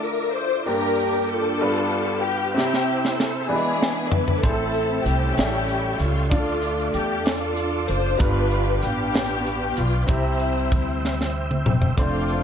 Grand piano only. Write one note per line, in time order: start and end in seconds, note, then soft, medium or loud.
0.00 0.68 D3 medium
0.00 0.63 D4 medium
0.00 0.64 F4 medium
0.00 0.68 A5 medium
0.66 1.57 G2 medium
0.66 1.62 A#3 medium
0.66 1.60 D4 medium
0.66 1.61 G4 medium
1.61 2.52 G2 medium
1.61 2.55 G3 medium
1.61 2.55 B3 medium
1.61 2.56 D4 medium
1.61 2.56 F4 medium
1.61 2.56 B4 medium
2.55 3.46 C3 medium
2.55 3.49 C4 medium
2.55 3.49 E4 medium
2.55 3.50 G4 medium
3.48 4.40 E3 medium
3.48 3.56 G3 soft
3.48 4.44 B3 medium
3.48 4.43 D4 medium
3.48 4.43 E4 medium
3.48 4.44 B4 medium
3.55 4.46 G#3 medium
4.43 5.35 A2 medium
4.43 5.38 E4 medium
4.43 4.51 G#4 medium
4.43 5.38 C5 medium
4.51 5.42 A4 medium
5.38 6.28 A2 medium
5.38 6.32 G3 medium
5.38 6.32 A3 medium
5.38 6.33 C#4 medium
5.38 5.45 G#4 medium
5.38 6.33 E5 medium
5.46 6.32 A4 medium
6.30 7.22 D3 medium
6.30 8.16 D4 medium
6.30 8.16 F4 medium
6.30 8.17 A4 medium
8.17 9.10 G2 medium
8.17 10.04 G3 medium
8.17 10.04 B3 medium
8.17 10.04 D4 medium
8.17 10.05 F4 medium
8.17 10.05 B4 medium
10.07 10.99 C3 medium
10.07 11.93 C4 medium
10.07 11.94 E4 medium
10.07 11.94 G4 medium
11.97 12.43 A3 medium
11.97 12.43 C4 medium
11.97 12.43 D4 medium
11.97 12.43 F4 medium
11.97 12.43 C5 medium